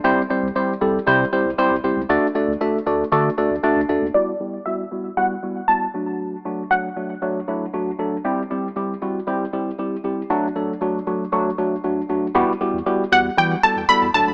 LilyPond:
<<
  \new Staff \with { instrumentName = "Synth pluck" } { \time 4/4 \key e \minor \tempo 4 = 117 r1 | r1 | d''4 e''4 fis''4 a''4~ | a''4 fis''2~ fis''8 r8 |
r1 | r1 | r4. fis''8 g''8 a''8 b''8 a''8 | }
  \new Staff \with { instrumentName = "Tine electric piano" } { \time 4/4 \key e \minor <g c' e' g' c''>8 <g c' e' g' c''>8 <g c' e' g' c''>8 <g c' e' g' a'>8 <g c' e' g' c''>8 <g c' e' g' c''>8 <g c' e' g' c''>8 <g c' e' g' c''>8 | <a d' fis' a' d''>8 <a d' fis' a' d''>8 <a d' fis' a' e''>8 <a d' fis' a' d''>8 <a d' fis' a' d''>8 <a d' fis' a' d''>8 <a d' fis' a' d''>8 <a d' fis' a' d''>8 | <g b e' fis'>8 <g b e' g'>8 <g b e' fis'>8 <g b e' fis'>8 <g b e' fis'>8 <g b e' fis'>8 <g b e' fis'>8 <fis a d' fis'>8~ | <fis a d' fis'>8 <fis a d' fis'>8 <fis a d' fis'>8 <fis a d' fis'>8 <fis a d' fis'>8 <fis a d' e'>8 <fis a d' fis'>8 <fis a d' a'>8 |
<g c' e' g'>8 <g c' e' g'>8 <g c' e' g'>8 <g c' e' fis'>8 <g c' e' g'>8 <g c' e' g'>8 <g c' e' g'>8 <g c' e' g'>8 | <fis a d' fis'>8 <fis a d' a'>8 <fis a d' fis'>8 <fis a d' fis'>8 <fis a d' fis'>8 <fis a d' fis'>8 <fis a d' fis'>8 <fis a d' fis'>8 | <g b e' fis' g'>8 <g b e' fis' g'>8 <g b e' fis' g'>8 <g b e' fis' g'>8 <g b e' fis' g'>8 <g b e' fis' a'>8 <g b e' fis' a'>8 <fis a d' fis' a'>8 | }
  \new Staff \with { instrumentName = "Sub bass" } { \clef bass \time 4/4 \key e \minor c,16 r8 c,16 r8 c,8 c8 r16 c,16 r16 c,16 c,16 cis,16 | d,16 r8 d,16 r8 d,8 d8 r16 d,16 r16 d,16 d,16 dis,16 | r1 | r1 |
r1 | r1 | e,16 r8 e,16 r8 e,8 e8 r16 e,16 r16 e,16 d,16 cis,16 | }
>>